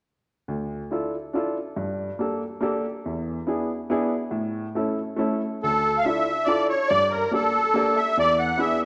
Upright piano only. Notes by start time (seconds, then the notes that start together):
0.48 D2
0.91 D4 E4 F4 A4
1.33 D4 E4 F4 A4
1.76 G2
2.19 A#3 D4 G4 A4
2.61 A#3 D4 G4 A4
3.06 E2
3.47 B3 D4 E4 G#4
3.90 B3 D4 E4 G#4
4.31 A2
4.75 A3 C#4 E4 A4
5.16 A3 C#4 E4 A4
5.63 D2
6.05 D4 E4 F4 A4
6.46 D4 E4 F4 A4
6.91 G2
7.31 A#3 D4 G4 A4
7.74 A#3 D4 G4 A4
8.17 E2
8.58 B3 D4 E4 G#4